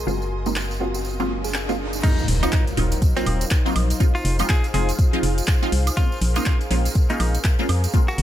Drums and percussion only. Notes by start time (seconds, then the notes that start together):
0.08 tambourine
0.22 tambourine
0.46 tambourine
0.56 clap, tambourine
0.71 tambourine
0.94 tambourine
1.05 tambourine
1.20 tambourine
1.44 tambourine
1.54 clap, tambourine
1.69 tambourine
1.93 tambourine
2.04 kick, closed hi-hat, crash, tambourine
2.18 tambourine
2.28 open hi-hat
2.43 closed hi-hat, tambourine, high woodblock
2.52 kick, clap, closed hi-hat, tambourine
2.67 closed hi-hat, tambourine
2.77 open hi-hat
2.92 closed hi-hat, tambourine
3.02 kick, closed hi-hat, tambourine
3.16 closed hi-hat, tambourine
3.26 open hi-hat, high woodblock
3.41 closed hi-hat, tambourine
3.51 kick, clap, closed hi-hat, tambourine
3.66 tambourine
3.76 open hi-hat, high woodblock
3.90 closed hi-hat, tambourine
4.00 kick, closed hi-hat, tambourine
4.15 tambourine
4.25 open hi-hat
4.39 closed hi-hat, tambourine, high woodblock
4.49 kick, clap, closed hi-hat, tambourine
4.64 closed hi-hat, tambourine
4.74 open hi-hat
4.89 closed hi-hat, tambourine
4.99 kick, closed hi-hat, tambourine
5.13 closed hi-hat, tambourine
5.23 open hi-hat
5.38 closed hi-hat, tambourine
5.48 kick, clap, closed hi-hat, tambourine
5.63 tambourine
5.72 open hi-hat
5.87 closed hi-hat, tambourine, high woodblock
5.97 kick, closed hi-hat, tambourine
6.12 tambourine
6.22 open hi-hat
6.36 closed hi-hat, tambourine, high woodblock
6.46 kick, clap, closed hi-hat, tambourine
6.61 closed hi-hat, tambourine
6.71 open hi-hat
6.85 closed hi-hat, tambourine
6.95 kick, closed hi-hat
7.09 closed hi-hat, tambourine
7.20 open hi-hat, high woodblock
7.35 closed hi-hat, tambourine
7.44 kick, clap, closed hi-hat, tambourine
7.59 tambourine
7.69 open hi-hat, high woodblock
7.84 closed hi-hat, tambourine
7.94 kick, closed hi-hat, tambourine
8.08 tambourine
8.18 open hi-hat